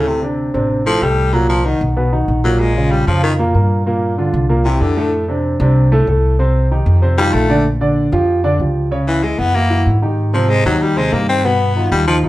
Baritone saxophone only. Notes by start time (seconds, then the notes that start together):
0.08 C3
0.86 F3
1.02 G3
1.33 F#3
1.49 F3
1.65 D#3
2.44 F#3
2.60 G#3
2.91 G3
3.07 F3
3.23 D#3
4.65 C3
4.81 D3
7.18 G3
7.33 A3
9.07 E3
9.23 G#3
9.39 B3
9.55 A#3
10.34 F3
10.50 G#3
10.66 F#3
10.82 G3
10.97 G#3
11.13 A#3
11.29 C4
11.45 B3
11.91 G3
12.07 F3